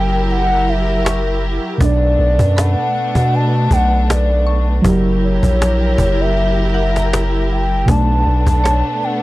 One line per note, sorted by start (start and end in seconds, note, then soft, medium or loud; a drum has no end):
0.00 1.59 F#1 loud
0.00 1.75 F#3 medium
0.00 1.77 F#3 medium
0.00 1.76 E4 medium
0.00 1.77 E4 medium
0.00 1.77 G4 medium
0.00 1.77 A#4 medium
0.00 1.78 A#4 medium
0.00 0.29 G5 loud
0.29 0.70 F#5 loud
0.29 cajon slap soft
0.68 1.44 E5 medium
0.68 cajon slap soft
1.05 2.07 C#6 medium
1.05 cajon slap loud
1.78 2.17 B1 loud
1.78 4.79 B2 medium
1.78 4.80 A3 medium
1.78 4.81 A3 medium
1.78 4.81 B3 medium
1.78 4.81 D4 medium
1.78 cajon bass loud
1.82 4.81 D4 medium
1.82 2.60 D5 loud
1.82 4.82 D5 medium
2.19 2.38 B1 loud
2.39 2.76 F#2 loud
2.39 cajon bass medium
2.57 3.36 F#5 medium
2.57 3.59 B5 medium
2.57 cajon slap loud
2.94 cajon slap soft
3.15 3.68 B2 loud
3.15 cajon bass medium
3.33 3.74 A5 loud
3.33 cajon slap soft
3.71 4.81 B1 loud
3.71 4.12 F#5 loud
3.71 cajon bass medium
4.10 4.68 D5 medium
4.10 cajon slap loud
4.46 5.18 C#6 medium
4.82 5.41 F#1 loud
4.82 7.83 F#3 medium
4.82 7.85 F#3 medium
4.82 7.84 E4 medium
4.82 7.85 E4 medium
4.82 7.85 G4 medium
4.82 7.85 A#4 medium
4.82 cajon bass loud
4.86 7.85 G4 medium
4.86 7.86 A#4 medium
5.24 6.22 C#5 loud
5.43 5.96 A#1 loud
5.43 cajon bass medium
5.62 cajon slap loud
5.98 7.84 F#1 loud
5.98 cajon bass loud
6.20 7.34 E5 loud
6.37 cajon slap soft
6.74 7.77 F#5 medium
6.74 cajon slap soft
6.96 7.98 A#5 medium
6.96 cajon slap medium
7.13 cajon slap loud
7.52 7.92 G5 loud
7.85 8.25 B1 loud
7.85 9.22 B2 medium
7.85 9.22 A3 medium
7.85 9.22 B3 medium
7.85 9.22 D4 medium
7.85 cajon bass loud
7.90 9.22 D4 medium
7.90 9.22 D5 medium
7.90 9.05 A5 loud
8.27 8.46 B1 loud
8.47 8.83 B1 loud
8.47 cajon bass medium
8.64 9.22 C#5 medium
8.64 cajon slap loud
9.02 9.22 F#5 loud
9.02 cajon slap soft